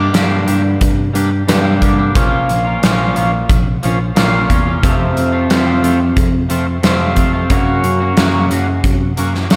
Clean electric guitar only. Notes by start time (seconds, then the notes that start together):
Already playing: G2 D3 D4 G4
0.00 G3 A#3
0.13 G2 D3 G3 A#3 D4 G4
0.46 G3 A#3 D4 G4
0.63 muted clean electric guitar stroke
1.13 G3 A#3 D4 G4
1.31 muted clean electric guitar stroke
1.47 G2 D3 G3 A#3 D4 G4
1.81 G3 A#3 D4 G4
1.98 G3 A#3 D4 G4
2.15 A#2 F3 A#3 C#4 F4
2.65 A#3 C#4 F4
2.82 A#2 F3 A#3 C#4 F4
3.16 F3 A#3 C#4 F4
3.33 muted clean electric guitar stroke
3.83 F3 A#3 C#4 F4
4.00 muted clean electric guitar stroke
4.16 A#2 A#3 C#4 F4
4.50 A#3 C#4 F4
4.66 A#3 C#4 F4
4.82 F2 C3 F3 A3 C4 F4
5.32 F3 A3 C4 F4
5.50 F2 C3 F3 A3 C4 F4
5.82 F3 A3 C4 F4
6.00 muted clean electric guitar stroke
6.49 F3 A3 C4 F4
6.67 muted clean electric guitar stroke
6.83 F2 C3 F3 A3 C4 F4
7.16 F3 A3 C4 F4
7.33 F3 A3 C4 F4
7.50 F#2 C#3 F#3 A#3 C#4 F#4
8.00 F#3 A#3 C#4 F#4
8.17 F#2 C#3 F#3 A#3 C#4 F#4
8.51 F#3 A#3 C#4 F#4
8.68 muted clean electric guitar stroke
9.17 F#3 A#3 C#4 F#4
9.34 muted clean electric guitar stroke
9.50 F#2 C#3 F#3 A#3 C#4 F#4